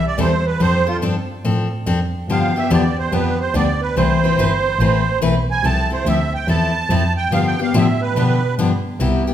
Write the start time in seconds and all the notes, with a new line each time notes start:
Already playing: C2
0.07 D5
0.18 E2 E3 G3 C4 E4 A4 C5
0.47 B4
0.60 F2 F3 C4 D4 A4 C5
0.87 C4 D4 F4 A4
1.01 G2 F3 C4 D4 A4
1.44 A2 F3 C4 D4 A4
1.86 F2 F3 C4 D4 A4
2.28 G2 D3 F3 B3 D4 G4 F5
2.56 B3 D4 G4 E5
2.70 E2 D3 F3 B3 D4 G4 D5
2.99 C5
3.12 F2 D3 F3 B3 D4 G4 B4
3.40 C5
3.54 D2 D3 F3 B3 D4 G4 D5
3.81 B4
3.96 C2 E3 A3 C4 E4 B4 C5
4.24 C4 E4 B4
4.37 G1 E3 A3 C4 E4 B4
4.79 A1 E3 A3 C4 E4 B4
5.20 B1 E3 A3 C4 E4 B4
5.51 G#5
5.63 C2 F3 C4 E4 A4 A5
5.90 C4 E4 A4 C5
6.05 D2 F3 C4 E4 A4 E5
6.32 D2 G5
6.48 E2 F3 C4 E4 A4 A5
6.89 F2 F3 C4 E4 A4
7.17 G5
7.31 G2 D3 F3 B3 D4 G4 F5
7.47 G5
7.59 B3 D4 G4 F5
7.74 A2 D3 F3 B3 D4 G4 E5
8.02 B4
8.15 B2 D3 F3 B3 D4 G4
8.58 G2 D3 F3 B3 D4 G4
9.00 C2 C3 G3 B3 E4 G4
9.27 B3 E4 G4